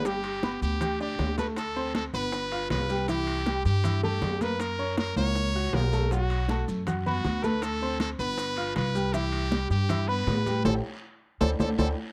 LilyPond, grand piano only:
\new Staff \with { instrumentName = "Grand piano" } { \time 4/4 \key g \major \tempo 4 = 159 <g g' g''>4 <b b' b''>4 <g' g'' g'''>8 <d' d'' d'''>4 <a a' a''>8~ | <a a' a''>8 <c' c'' c'''>4 <b b' b''>4 <f' f'' f'''>4 <g g' g''>8 | <e e' e''>4 <g g' g''>4 <e' e'' e'''>8 <a a' a''>4 <bes bes' bes''>8~ | <bes bes' bes''>8 <cis' cis'' cis'''>4 <ais ais' ais''>4 <fis' fis'' fis'''>4 <a a' a''>8 |
<fis fis' fis''>4 <a a' a''>4 <fis' fis'' fis'''>8 <b b' b''>4 <a a' a''>8~ | <a a' a''>8 <c' c'' c'''>4 <b b' b''>4 <f' f'' f'''>4 <g g' g''>8 | <e e' e''>4 <g g' g''>4 <e' e'' e'''>8 <b b' b''>4 <g g' g''>8 | <g' a' c''>8 r4. <a' c'' d''>8 <a' c'' d''>8 <a' c'' d''>8 r8 | }